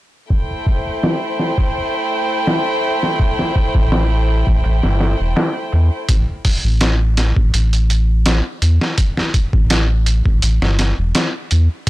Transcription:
0.30 violin section A3 E4 C5 G5, kick, closed hi-hat
0.67 kick, open hi-hat
1.03 snare, closed hi-hat
1.39 snare, closed hi-hat
1.58 kick
1.75 closed hi-hat
1.93 closed hi-hat
2.10 closed hi-hat
2.47 snare, closed hi-hat
2.83 closed hi-hat
3.03 snare
3.20 kick, closed hi-hat
3.39 snare
3.56 kick, closed hi-hat
3.75 analog synth bass A1, kick
3.92 snare, closed hi-hat
4.28 closed hi-hat
4.47 analog synth bass A1, kick
4.64 analog synth bass A1, closed hi-hat
4.83 analog synth bass G1, snare
5.00 snare, closed hi-hat
5.20 analog synth bass E1
5.36 snare, closed hi-hat
5.72 analog synth bass E2, closed hi-hat
6.09 analog synth bass A1, kick, closed hi-hat
6.45 kick, open hi-hat
6.64 analog synth bass A1
6.81 snare, closed hi-hat
7.17 snare, closed hi-hat
7.36 analog synth bass A1, kick
7.54 analog synth bass A1, closed hi-hat
7.73 closed hi-hat
7.90 closed hi-hat
8.26 snare, closed hi-hat
8.62 analog synth bass E2, closed hi-hat
8.81 snare
8.98 kick, closed hi-hat
9.17 snare
9.34 kick, closed hi-hat
9.53 analog synth bass A1, kick
9.70 snare, closed hi-hat
10.06 closed hi-hat
10.26 analog synth bass A1, kick
10.42 analog synth bass A1, closed hi-hat
10.62 analog synth bass G1, snare
10.79 snare, closed hi-hat
10.99 analog synth bass E1
11.15 snare, closed hi-hat
11.51 analog synth bass E2, closed hi-hat

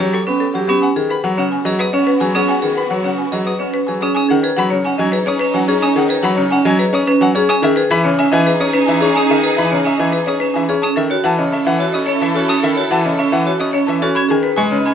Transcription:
Already playing: violin section C#4 G4
0.00 grand piano F#3, vibraphone G4, marimba C#5
0.13 marimba A4, violin C#6
0.27 grand piano B3, vibraphone C#4, marimba B4
0.40 marimba A4
0.54 grand piano F#3, vibraphone G4, marimba F#5
0.67 grand piano B3, vibraphone C#4, marimba G4, violin C#6
0.82 violin section B3 F#4, violin F#5, marimba G#5
0.96 grand piano D#3, marimba G#4, vibraphone G#4
1.10 marimba B4, violin B5
1.24 grand piano F#3, vibraphone C#5, marimba F#5
1.37 grand piano C#3, vibraphone C#4, marimba C#5, violin F#5
1.52 marimba G#5
1.65 grand piano F#3, vibraphone G#4, marimba D#5
1.79 marimba B4, violin D#6
1.93 grand piano C#4, vibraphone C#4, marimba C#5
2.07 marimba B4
2.20 grand piano F#3, vibraphone G#4, marimba G#5
2.34 vibraphone C#4, grand piano C#4, marimba G#4, violin D#6
2.48 violin F#5, marimba G#5
2.62 grand piano D#3, vibraphone G#4, marimba G#4
2.76 marimba B4, violin B5
2.90 grand piano F#3, vibraphone C#5, marimba F#5
3.04 grand piano C#3, vibraphone C#4, marimba C#5, violin F#5
3.18 marimba G#5
3.32 grand piano F#3, vibraphone G#4, marimba D#5
3.45 marimba B4, violin D#6
3.59 vibraphone C#4, grand piano C#4, marimba C#5
3.74 marimba B4
3.87 grand piano F#3, vibraphone G#4, marimba G#5
4.01 vibraphone C#4, grand piano C#4, marimba G#4, violin D#6
4.15 violin section C#4 D#4, vibraphone C#4, marimba G#5, violin D#6
4.29 grand piano D#3, marimba G#4, violin F#5
4.43 vibraphone G#4, marimba B4
4.57 grand piano F#3, marimba F#5, violin B5
4.70 grand piano C#3, marimba C#5, vibraphone C#5
4.85 vibraphone C#4, violin F#5, marimba G#5
4.98 grand piano F#3, marimba D#5, violin G#5
5.12 vibraphone G#4, marimba B4
5.26 grand piano C#4, marimba C#5, violin D#6
5.39 vibraphone C#4, marimba B4
5.54 grand piano F#3, violin F#5, marimba G#5
5.68 grand piano C#4, marimba G#4, vibraphone G#4
5.82 vibraphone C#4, marimba G#5, violin D#6
5.96 grand piano D#3, marimba G#4, violin F#5
6.09 vibraphone G#4, marimba B4
6.23 grand piano F#3, marimba F#5, violin B5
6.36 grand piano C#3, marimba C#5, vibraphone C#5
6.50 vibraphone C#4, violin F#5, marimba G#5
6.65 grand piano F#3, marimba D#5, violin G#5
6.79 vibraphone G#4, marimba B4
6.93 grand piano C#4, marimba C#5, violin D#6
7.07 vibraphone C#4, marimba B4
7.21 grand piano F#3, violin F#5, marimba G#5
7.35 grand piano C#4, vibraphone G#4, marimba G#4
7.49 vibraphone C#4, violin section D#4 G#4, marimba G#5, violin D#6
7.62 grand piano D#3, marimba G#4, violin E5
7.76 vibraphone G#4, marimba B4
7.91 grand piano E3, marimba E5, violin B5
8.04 grand piano C#3, marimba C#5, vibraphone C#5
8.18 vibraphone C#4, violin E5, marimba G#5
8.32 grand piano E3, marimba D#5, violin G#5
8.46 vibraphone G#4, marimba B4
8.60 grand piano C#4, marimba C#5, violin D#6
8.73 vibraphone C#4, marimba B4
8.86 grand piano E3, violin E5, marimba G#5
9.01 grand piano C#4, marimba G#4, vibraphone G#4
9.14 vibraphone C#4, marimba G#5, violin D#6
9.29 grand piano D#3, marimba G#4, violin E5
9.43 vibraphone G#4, marimba B4
9.57 grand piano E3, marimba E5, violin B5
9.71 grand piano C#3, marimba C#5, vibraphone C#5
9.85 vibraphone C#4, violin E5, marimba G#5
9.98 grand piano E3, marimba D#5, violin G#5
10.12 vibraphone G#4, marimba B4
10.26 grand piano C#4, marimba C#5, violin D#6
10.40 vibraphone C#4, marimba B4
10.54 grand piano E3, violin E5, marimba G#5
10.69 grand piano C#4, marimba G#4, vibraphone G#4
10.82 vibraphone C#4, violin section E4 A4, marimba A5, violin D#6
10.96 grand piano D#3, marimba A4, violin E5
11.10 vibraphone F#4, marimba C#5
11.24 grand piano E3, marimba F#5, violin A5
11.38 grand piano C#3, vibraphone C#5, marimba D#5
11.52 vibraphone C#4, violin E5, marimba A5
11.65 grand piano E3, marimba E5, violin F#5
11.79 vibraphone F#4, marimba C#5
11.92 grand piano C#4, marimba D#5, violin D#6
12.07 vibraphone C#4, marimba C#5
12.20 grand piano E3, violin E5, marimba A5
12.35 grand piano C#4, vibraphone F#4, marimba A4
12.48 vibraphone C#4, marimba A5, violin D#6
12.63 grand piano D#3, marimba A4, violin E5
12.76 vibraphone F#4, marimba C#5
12.91 grand piano E3, marimba F#5, violin A5
13.05 grand piano C#3, vibraphone C#5, marimba D#5
13.18 vibraphone C#4, violin E5, marimba A5
13.32 grand piano E3, marimba E5, violin F#5
13.46 vibraphone F#4, marimba C#5
13.60 grand piano C#4, marimba D#5, violin D#6
13.73 vibraphone C#4, marimba C#5
13.87 grand piano E3, violin E5, marimba A5
14.02 grand piano C#4, vibraphone F#4, marimba A4
14.15 vibraphone C#4, violin section D#4 B4, marimba B5, violin G#6
14.29 grand piano D#3, marimba G#4, violin G#5
14.43 marimba B4, vibraphone B4
14.56 grand piano G#3, marimba G#5, violin C#6
14.71 grand piano C#3, marimba C#5, vibraphone D#5
14.85 vibraphone C#4, violin G#5, marimba B5

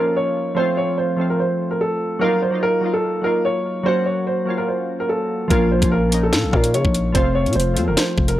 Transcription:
Already playing: synth keys F3 A#3 C#4 D#4, upright piano A#4
0.00 synth keys F4
0.16 upright piano C#5
0.55 synth keys F3 A3 C4, upright piano C5
0.59 synth keys F4
0.77 upright piano C#5
0.98 upright piano C5
1.16 synth keys F3 A3 C4
1.21 synth keys F4
1.30 upright piano A#4
1.40 upright piano C5
1.71 upright piano A#4
1.81 upright piano A4
2.19 synth keys F#3 A#3 D#4, upright piano A#4
2.24 synth keys F4
2.42 upright piano C5
2.51 synth keys F#3 A#3 D#4
2.55 synth keys F4
2.63 upright piano A#4
2.81 synth keys F#3 A#3 D#4
2.86 synth keys F4
2.94 upright piano A4
3.22 synth keys F#3 A#3 D#4, upright piano A#4
3.26 synth keys F4
3.45 upright piano C#5
3.83 synth keys F#3 A#3 C#4, upright piano C5
3.88 synth keys F#4
4.06 upright piano C#5
4.27 upright piano C5
4.45 synth keys F#3 A#3 C#4
4.50 synth keys F4
4.58 upright piano A#4
4.68 upright piano C5
5.00 upright piano A#4
5.09 upright piano A4
5.48 808-style bass A#1, synth keys F3 A#3 C#4, upright piano A#4, kick, closed hi-hat
5.53 synth keys F4
5.71 upright piano C5
5.80 808-style bass A#1, synth keys F3 A#3 C#4, kick, closed hi-hat
5.84 synth keys F4
5.92 upright piano A#4
6.09 synth keys F3 A#3 C#4, closed hi-hat
6.14 synth keys D#4
6.23 upright piano A4
6.33 808-style bass A#2, snare, closed hi-hat
6.44 808-style bass A#1
6.51 808-style bass A#2, synth keys F3 A#3 C#4, upright piano A#4, kick
6.56 synth keys F4
6.64 closed hi-hat
6.74 808-style bass C#3, upright piano C#5, closed hi-hat
6.85 808-style bass A#1, kick
6.94 closed hi-hat
7.12 808-style bass F1, synth keys F3 A3 C4, upright piano C5, kick, closed hi-hat
7.17 synth keys F4
7.35 upright piano C#5
7.46 808-style bass C3, closed hi-hat
7.53 808-style bass F1, upright piano C5, closed hi-hat
7.60 closed hi-hat
7.74 808-style bass F2, synth keys F3 A3 C4, closed hi-hat
7.79 synth keys F4
7.87 808-style bass F1, upright piano A#4
7.97 upright piano C5, snare, closed hi-hat
8.18 808-style bass F1, kick
8.28 upright piano A#4, closed hi-hat

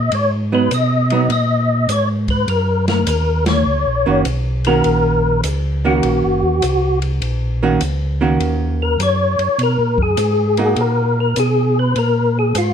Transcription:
Already playing: tonewheel organ A#2 D#5
0.12 tonewheel organ G#2 C#5, ride
0.52 hollow-body jazz guitar F#3 B3 D#4, tonewheel organ B4
0.71 tonewheel organ B2 D#5, hi-hat pedal, ride
1.10 hollow-body jazz guitar F#3 B3 D#4, ride
1.29 tonewheel organ A#2 D#5, ride
1.88 tonewheel organ G#2 C#5, hi-hat pedal, ride
2.28 tonewheel organ B4, kick, ride
2.48 tonewheel organ F#2 A#4, ride
2.88 tonewheel organ A#4, snare, ride
3.07 tonewheel organ D#2 A#4, hi-hat pedal, ride
3.46 tonewheel organ C#5, snare, ride
3.66 tonewheel organ C#2
3.86 tonewheel organ A#1
4.06 tonewheel organ F#1, hollow-body jazz guitar D#3 A#3 C#4 F#4
4.25 tonewheel organ B1, hi-hat pedal, ride
4.65 hollow-body jazz guitar D#3 A#3 C#4 F#4, tonewheel organ A#4, ride
4.84 tonewheel organ A#1, ride
5.44 tonewheel organ C#2, hi-hat pedal, ride
5.85 hollow-body jazz guitar D#3 A#3 C#4 F#4, tonewheel organ F#4
6.03 tonewheel organ A#1, ride
6.24 tonewheel organ F#1
6.43 tonewheel organ D#2
6.62 tonewheel organ C2, hi-hat pedal, ride
7.02 ride
7.22 tonewheel organ A#1, ride
7.63 hollow-body jazz guitar D#3 A#3 C#4 F#4
7.81 tonewheel organ C#2, hi-hat pedal, ride
8.21 hollow-body jazz guitar D#3 A#3 C#4 F#4
8.39 tonewheel organ D#2, ride
8.82 tonewheel organ A#4
8.99 tonewheel organ F#2 C#5, hi-hat pedal, ride
9.39 tonewheel organ F#2, ride
9.58 tonewheel organ B2, ride
9.63 tonewheel organ A#4
9.78 tonewheel organ A#2
9.98 tonewheel organ F#2, kick
10.02 tonewheel organ G#4
10.17 tonewheel organ G#2, hi-hat pedal, ride
10.57 hollow-body jazz guitar A#3 D#4 F#4, ride
10.76 tonewheel organ A#2, ride
10.81 tonewheel organ A#4
11.20 tonewheel organ A#4
11.36 tonewheel organ B2 G#4, hi-hat pedal, ride
11.79 tonewheel organ B4
11.96 tonewheel organ A#2 A#4, ride
12.39 tonewheel organ G#4
12.55 tonewheel organ G#2 F4, hi-hat pedal, ride

